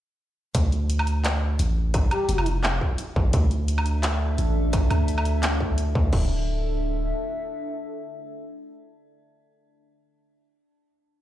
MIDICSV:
0, 0, Header, 1, 6, 480
1, 0, Start_track
1, 0, Tempo, 348837
1, 751, Time_signature, 4, 2, 24, 8
1, 15435, End_track
2, 0, Start_track
2, 0, Title_t, "Analog synth pad"
2, 0, Program_c, 0, 89
2, 4585, Note_on_c, 0, 76, 87
2, 4586, Note_on_c, 0, 62, 80
2, 4586, Note_on_c, 0, 69, 74
2, 8390, Note_off_c, 0, 76, 0
2, 8391, Note_off_c, 0, 62, 0
2, 8391, Note_off_c, 0, 69, 0
2, 8434, Note_on_c, 0, 76, 89
2, 8436, Note_on_c, 0, 62, 77
2, 8437, Note_on_c, 0, 69, 77
2, 13318, Note_off_c, 0, 76, 0
2, 13320, Note_off_c, 0, 62, 0
2, 13320, Note_off_c, 0, 69, 0
2, 15435, End_track
3, 0, Start_track
3, 0, Title_t, "Soft synth lead"
3, 0, Program_c, 1, 80
3, 2912, Note_on_c, 1, 67, 97
3, 3392, Note_off_c, 1, 67, 0
3, 15435, End_track
4, 0, Start_track
4, 0, Title_t, "Synth drone"
4, 0, Program_c, 2, 95
4, 4591, Note_on_c, 2, 62, 94
4, 8442, Note_off_c, 2, 62, 0
4, 15435, End_track
5, 0, Start_track
5, 0, Title_t, "808-style bass"
5, 0, Program_c, 3, 38
5, 754, Note_on_c, 3, 38, 95
5, 2176, Note_off_c, 3, 38, 0
5, 2194, Note_on_c, 3, 33, 95
5, 2896, Note_off_c, 3, 33, 0
5, 3149, Note_on_c, 3, 29, 93
5, 3853, Note_off_c, 3, 29, 0
5, 4352, Note_on_c, 3, 33, 93
5, 4575, Note_off_c, 3, 33, 0
5, 4592, Note_on_c, 3, 38, 97
5, 6015, Note_off_c, 3, 38, 0
5, 6036, Note_on_c, 3, 33, 98
5, 6737, Note_off_c, 3, 33, 0
5, 6755, Note_on_c, 3, 38, 96
5, 8176, Note_off_c, 3, 38, 0
5, 8193, Note_on_c, 3, 38, 96
5, 8415, Note_off_c, 3, 38, 0
5, 8434, Note_on_c, 3, 26, 97
5, 9818, Note_off_c, 3, 26, 0
5, 15435, End_track
6, 0, Start_track
6, 0, Title_t, "Drums"
6, 751, Note_on_c, 9, 42, 80
6, 753, Note_on_c, 9, 36, 118
6, 888, Note_off_c, 9, 42, 0
6, 891, Note_off_c, 9, 36, 0
6, 995, Note_on_c, 9, 42, 36
6, 1133, Note_off_c, 9, 42, 0
6, 1233, Note_on_c, 9, 42, 70
6, 1366, Note_on_c, 9, 77, 86
6, 1370, Note_off_c, 9, 42, 0
6, 1473, Note_on_c, 9, 42, 38
6, 1504, Note_off_c, 9, 77, 0
6, 1610, Note_off_c, 9, 42, 0
6, 1714, Note_on_c, 9, 39, 115
6, 1714, Note_on_c, 9, 42, 83
6, 1852, Note_off_c, 9, 39, 0
6, 1852, Note_off_c, 9, 42, 0
6, 2191, Note_on_c, 9, 42, 71
6, 2329, Note_off_c, 9, 42, 0
6, 2669, Note_on_c, 9, 42, 83
6, 2669, Note_on_c, 9, 77, 38
6, 2672, Note_on_c, 9, 36, 124
6, 2806, Note_off_c, 9, 42, 0
6, 2806, Note_off_c, 9, 77, 0
6, 2809, Note_off_c, 9, 36, 0
6, 2906, Note_on_c, 9, 42, 37
6, 2906, Note_on_c, 9, 77, 60
6, 3044, Note_off_c, 9, 42, 0
6, 3044, Note_off_c, 9, 77, 0
6, 3147, Note_on_c, 9, 42, 70
6, 3278, Note_on_c, 9, 77, 83
6, 3284, Note_off_c, 9, 42, 0
6, 3387, Note_on_c, 9, 42, 41
6, 3416, Note_off_c, 9, 77, 0
6, 3524, Note_off_c, 9, 42, 0
6, 3627, Note_on_c, 9, 39, 120
6, 3764, Note_off_c, 9, 39, 0
6, 3872, Note_on_c, 9, 36, 62
6, 4009, Note_off_c, 9, 36, 0
6, 4104, Note_on_c, 9, 42, 73
6, 4242, Note_off_c, 9, 42, 0
6, 4351, Note_on_c, 9, 36, 112
6, 4489, Note_off_c, 9, 36, 0
6, 4584, Note_on_c, 9, 42, 80
6, 4591, Note_on_c, 9, 36, 127
6, 4722, Note_off_c, 9, 42, 0
6, 4729, Note_off_c, 9, 36, 0
6, 4829, Note_on_c, 9, 42, 36
6, 4966, Note_off_c, 9, 42, 0
6, 5068, Note_on_c, 9, 42, 69
6, 5201, Note_on_c, 9, 77, 77
6, 5205, Note_off_c, 9, 42, 0
6, 5307, Note_on_c, 9, 42, 39
6, 5338, Note_off_c, 9, 77, 0
6, 5444, Note_off_c, 9, 42, 0
6, 5548, Note_on_c, 9, 39, 124
6, 5548, Note_on_c, 9, 42, 86
6, 5686, Note_off_c, 9, 39, 0
6, 5686, Note_off_c, 9, 42, 0
6, 6030, Note_on_c, 9, 42, 71
6, 6168, Note_off_c, 9, 42, 0
6, 6509, Note_on_c, 9, 42, 77
6, 6509, Note_on_c, 9, 77, 35
6, 6512, Note_on_c, 9, 36, 120
6, 6647, Note_off_c, 9, 42, 0
6, 6647, Note_off_c, 9, 77, 0
6, 6650, Note_off_c, 9, 36, 0
6, 6749, Note_on_c, 9, 42, 36
6, 6749, Note_on_c, 9, 77, 60
6, 6887, Note_off_c, 9, 42, 0
6, 6887, Note_off_c, 9, 77, 0
6, 6992, Note_on_c, 9, 42, 67
6, 7124, Note_on_c, 9, 77, 79
6, 7130, Note_off_c, 9, 42, 0
6, 7229, Note_on_c, 9, 42, 38
6, 7262, Note_off_c, 9, 77, 0
6, 7367, Note_off_c, 9, 42, 0
6, 7470, Note_on_c, 9, 39, 124
6, 7470, Note_on_c, 9, 42, 77
6, 7608, Note_off_c, 9, 39, 0
6, 7608, Note_off_c, 9, 42, 0
6, 7711, Note_on_c, 9, 36, 64
6, 7849, Note_off_c, 9, 36, 0
6, 7951, Note_on_c, 9, 42, 68
6, 8088, Note_off_c, 9, 42, 0
6, 8192, Note_on_c, 9, 36, 110
6, 8329, Note_off_c, 9, 36, 0
6, 8429, Note_on_c, 9, 49, 91
6, 8432, Note_on_c, 9, 36, 118
6, 8567, Note_off_c, 9, 49, 0
6, 8570, Note_off_c, 9, 36, 0
6, 15435, End_track
0, 0, End_of_file